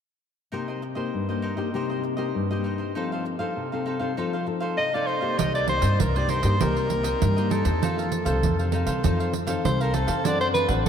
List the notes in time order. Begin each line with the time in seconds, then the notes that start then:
0.52 C3 A#3 D#4 G4 A#4 C5 D#5
0.68 A#4 C5 D#5
0.82 muted cavaquinho stroke
0.95 A#3 D#4 G4 A#4 C5 D#5
1.14 G2
1.29 A#3 D#4 G4 A#4 C5 D#5
1.42 D#4 A#4 C5 D#5
1.57 A#3 D#4 G4 A#4 C5 D#5
1.74 C3 A#3 D#4 G4 A#4 C5 D#5
1.90 A#4 C5 D#5
2.03 muted cavaquinho stroke
2.17 A#3 D#4 G4 A#4 C5 D#5
2.35 G2
2.51 A#3 D#4 G4 A#4 C5 D#5
2.64 D#4 A#4 C5 D#5
2.78 A#4 C5 D#5
2.95 F3 C4 D#4 A4 C5 F5
3.12 A4 C5 F5
3.25 muted cavaquinho stroke
3.39 C4 D#4 A4 C5 F5
3.57 C3
3.72 C4 D#4 A4 C5 F5
3.86 D#4 A4 C5 F5
3.99 C4 D#4 A4 C5 F5
4.17 F3 C4 D#4 A4 C5 F5
4.33 A4 C5 F5
4.46 C4 D#4 A4, muted cavaquinho stroke
4.60 A4 C5 F5
4.78 C3 D#5
4.94 C4 D#4 A4 C5 D5 F5
5.07 D#4 A4 C5 F5
5.21 A#3 D#4 G4 A4 C5 F5
5.38 C2 C3 D#4 A#4 C5 D#5, pandeiro
5.54 A#4 C5 D5 D#5, pandeiro
5.68 A#3 D#4 G4 C5, muted cavaquinho stroke, pandeiro
5.81 G2 A#4 C5 D#5, pandeiro
6.00 C2 G2 A#4, pandeiro
6.15 A#3 D#4 G4 A#4 C5 D5 D#5, pandeiro
6.28 D#4 A#4 C5 D#5, pandeiro
6.42 G2 A#3 D#4 G4 A#4 C5 D#5, pandeiro
6.60 C2 C3 A#3 D#4 G4 A#4 C5 D#5, pandeiro
6.76 A#4 C5 D#5, pandeiro
6.90 A#3 D#4 G4, muted cavaquinho stroke, pandeiro
7.03 A#4 C5 D#5, pandeiro
7.22 G2, pandeiro
7.37 A#3 D#4 G4 A#4 C5 D#5, pandeiro
7.50 D#4 A4 A#4 C5 D#5, pandeiro
7.64 E2 C4 D#4 A4 A#4 C5 D#5, pandeiro
7.82 F2 F3 D#4 A4 C5 F5, pandeiro
7.98 A4 C5 F5, pandeiro
8.12 muted cavaquinho stroke, pandeiro
8.25 C2 C4 D#4 A4 C5 F5, pandeiro
8.43 F2 C3, pandeiro
8.59 A4 C5 F5, pandeiro
8.72 C4 D#4 A4 C5 F5, pandeiro
8.86 C2 A4 C5 F5, pandeiro
9.03 F2 F3 C4 D#4 A4 C5 F5, pandeiro
9.20 A4 C5 F5, pandeiro
9.33 muted cavaquinho stroke, pandeiro
9.47 C4 D#4 A4 C5 F5, pandeiro
9.64 C2 C3 C5, pandeiro
9.80 A4 A#4 C5 F5, pandeiro
9.93 C4 D#4 A4 C5 F5, pandeiro
10.07 F2 A4 C5 F5, pandeiro
10.25 F#2 F#3 C4 D4 A4 C5 D5 F#5, pandeiro
10.41 C5 D5 F#5, pandeiro
10.54 B4, muted cavaquinho stroke, pandeiro
10.68 A1 C4 D4 A4 C5 D5 F#5, pandeiro